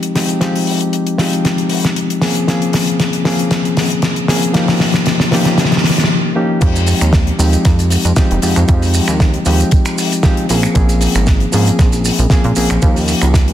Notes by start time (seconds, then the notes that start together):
Already playing: F3 G#3 C4 D#4 G4
0.03 closed hi-hat
0.15 F3 G#3 C4 D#4 G4, snare, open hi-hat
0.29 closed hi-hat
0.40 F3 G#3 C4 D#4 G4, snare, closed hi-hat
0.55 open hi-hat
0.67 open hi-hat
0.81 closed hi-hat
0.93 closed hi-hat
1.07 closed hi-hat
1.18 F3 G#3 C4 D#4 G4, snare, open hi-hat
1.33 closed hi-hat
1.45 snare, closed hi-hat
1.58 closed hi-hat
1.69 open hi-hat
1.84 snare, closed hi-hat
1.96 closed hi-hat
2.10 closed hi-hat
2.21 F3 A#3 C4 C#4 G#4, snare, open hi-hat
2.35 closed hi-hat
2.47 F3 A#3 C4 C#4 G#4, snare, closed hi-hat
2.62 closed hi-hat
2.73 snare, open hi-hat
2.87 closed hi-hat
3.00 snare, closed hi-hat
3.13 closed hi-hat
3.24 F3 A#3 C4 C#4 G#4, snare, open hi-hat
3.39 closed hi-hat
3.51 snare, closed hi-hat
3.65 closed hi-hat
3.77 snare, open hi-hat
3.90 closed hi-hat
4.02 snare, closed hi-hat
4.16 closed hi-hat
4.28 F3 A#3 C4 C#4 G#4, snare, open hi-hat
4.43 closed hi-hat
4.54 F3 A#3 C#4 D#4 G4, snare, closed hi-hat
4.68 snare, open hi-hat
4.80 snare, open hi-hat
4.94 snare, closed hi-hat
5.06 snare, closed hi-hat
5.20 snare, closed hi-hat
5.31 F3 A#3 C#4 D#4 G4, snare, open hi-hat
5.45 snare, closed hi-hat
5.58 snare, closed hi-hat
5.65 snare
5.72 snare, closed hi-hat
5.77 snare
5.84 snare, open hi-hat
5.90 snare
5.98 snare, closed hi-hat
6.04 snare
6.35 F3 A#3 C#4 D#4 G4
6.61 F2 F3 G#3 C4 D#4 G4, kick, closed hi-hat, crash, shaker
6.76 closed hi-hat, shaker
6.87 open hi-hat, shaker
7.01 D#2, finger snap, closed hi-hat, shaker
7.13 kick, snare, closed hi-hat, shaker
7.27 closed hi-hat
7.38 D#2 F3 G#3 C4 D#4 G4, open hi-hat, shaker
7.53 closed hi-hat, shaker
7.65 F2, kick, snare, closed hi-hat, shaker
7.79 closed hi-hat, shaker
7.90 open hi-hat, shaker
8.05 F2, closed hi-hat, shaker
8.16 F3 G#3 C4 D#4 G4, kick, snare, closed hi-hat, shaker
8.31 F1, closed hi-hat
8.42 F2 F3 G#3 C4 D#4 G4, open hi-hat, shaker
8.56 F2, finger snap, closed hi-hat, shaker
8.68 F2 F3 G#3 C4 D#4 G4, kick, closed hi-hat, shaker
8.82 open hi-hat, shaker
8.94 open hi-hat, shaker
9.08 D#2, finger snap, closed hi-hat, shaker
9.20 kick, snare, closed hi-hat, shaker
9.34 closed hi-hat
9.46 D#2 F3 G#3 C4 D#4 G4, open hi-hat, shaker
9.60 closed hi-hat, shaker
9.71 kick, closed hi-hat, shaker
9.85 finger snap, closed hi-hat, shaker
9.98 open hi-hat, shaker
10.12 closed hi-hat, shaker
10.23 F3 G#3 C4 D#4 G4, kick, snare, closed hi-hat, shaker
10.37 closed hi-hat
10.49 A#1 F3 A#3 C4 C#4 G#4, open hi-hat, shaker
10.63 finger snap, closed hi-hat, shaker
10.74 A#1 F3 A#3 C4 C#4 G#4, kick, closed hi-hat, shaker
10.89 closed hi-hat, shaker
11.01 open hi-hat, shaker
11.15 G#1, finger snap, shaker
11.27 kick, snare, closed hi-hat, shaker
11.40 closed hi-hat
11.52 G#2 F3 A#3 C4 C#4 G#4, open hi-hat, shaker
11.67 closed hi-hat, shaker
11.79 A#1, kick, snare, closed hi-hat, shaker
11.92 closed hi-hat, shaker
12.05 open hi-hat, shaker
12.19 A#1, closed hi-hat, shaker
12.30 F3 A#3 C4 C#4 G#4, kick, snare, closed hi-hat, shaker
12.44 A#2, closed hi-hat
12.56 A#1 F3 A#3 C4 C#4 G#4, open hi-hat, shaker
12.70 A#1, finger snap, closed hi-hat, shaker
12.82 D#2 F3 A#3 C#4 D#4 G4, kick, closed hi-hat, shaker
12.96 open hi-hat, shaker
13.08 open hi-hat, shaker
13.22 C#2, finger snap, closed hi-hat, shaker
13.34 kick, snare, closed hi-hat, shaker
13.48 closed hi-hat